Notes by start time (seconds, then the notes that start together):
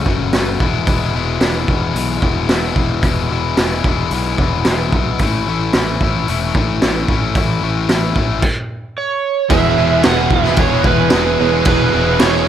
0.06 F#1 F#2 C#3 F#3 A3 C#4 F#4, kick
0.33 F#1 F#2 C#3 F#3 A3 C#4 F#4, snare, open hi-hat
0.60 E1 E2 B2 E3 G#3 B3 E4, kick
0.87 E1 E2 B2 E3 G#3 B3 E4, kick, open hi-hat
1.14 E1 E2 B2 E3 G#3 B3 E4
1.41 E1 E2 B2 E3 G#3 B3 E4, snare, open hi-hat
1.68 E1 E2 B2 E3 G#3 B3 E4, kick
1.94 B1 E2 B2 E3 G#3 B3 E4, open hi-hat
2.21 E1 E2 B2 E3 G#3 B3 E4, kick
2.48 E1 E2 B2 E3 G#3 B3 E4, snare, open hi-hat
2.75 E1 E2 B2 E3 G#3 B3 E4, kick
3.02 E1 E2 B2 E3 G#3 B3 E4, kick, open hi-hat
3.30 E1 E2 B2 E3 G#3 B3 E4
3.57 E1 E2 B2 E3 G#3 B3 E4, snare, open hi-hat
3.84 E1 E2 B2 E3 G#3 B3 E4, kick
4.11 B1 E2 B2 E3 G#3 B3 E4, open hi-hat
4.38 E1 E2 B2 E3 G#3 B3 E4, kick
4.65 E1 E2 B2 E3, snare, open hi-hat
4.69 G#3 B3 E4
4.92 B1 E2 B2 E3 G#3 B3 E4, kick
5.19 A1 A2 E3 A3 C#4, kick, open hi-hat
5.23 E4
5.47 A1 A2 E3 A3 C#4 E4
5.73 A1 A2 E3 A3 C#4 E4, snare, open hi-hat
6.01 A1 A2 E3 A3 C#4 E4, kick
6.28 E1 A2 E3 A3 C#4 E4, open hi-hat
6.55 A1 A2 E3 A3 C#4 E4, kick
6.82 A1 A2 E3 A3 C#4 E4, snare, open hi-hat
7.08 A1 A2 E3 A3 C#4 E4, kick
7.35 A1 A2 E3 A3 C#4 E4, kick, open hi-hat
7.62 A1 A2 E3 A3 C#4 E4
7.88 A1 A2 E3 A3 C#4 E4, snare, open hi-hat
8.15 A1 A2 E3 A3 C#4 E4, kick
8.42 kick, crash
8.98 C#5
9.50 E1 E2 B2 E3 G#3 B3 E4 G#4 B4 E5, kick, crash
9.63 E3 G#3 B3 G#4
9.77 E1 E2 B2 E3 B3 E4 G#4
9.91 E3 G#3 B3 G#4
10.03 E1 E2 B2 E3 G#3 B3 E4 G#4 F#5, snare, crash
10.17 E3 B3 E4 G#4
10.30 E1 E2 B2 E3 G#3 B3 G#4 E5, muted overdriven electric guitar stroke, kick
10.44 E3 G#3 B3 E4 G#4, snare
10.56 E1 E2 B2 C#5, kick, crash
10.61 E3
10.71 E3 G#3 B3 E4 G#4
10.84 E1 E2 B2 E3 G#3 B3 G#4 B4, kick
10.99 E3 G#3 B3 G#4
11.10 E1 E2 B2 E3 B3 E4 G#4, snare, crash
11.14 G#3
11.25 E3 B3 E4 G#4
11.39 E1 E2 B2 E3 G#3 B3 E4 G#4 C#5
11.52 E3 G#3 B3 E4 G#4
11.65 E1 E2 B2 E3 G#3 B3 E4 G#4 B4, kick, crash
11.80 E3 G#3 B3 G#4
11.92 E1 E2 B2 E3 B3 E4 G#4
12.06 E3 G#3 B3 G#4
12.19 E1 E2 B2 E3 G#3 B3 E4 G#4 C#5, snare, crash
12.35 E3 B3 E4 G#4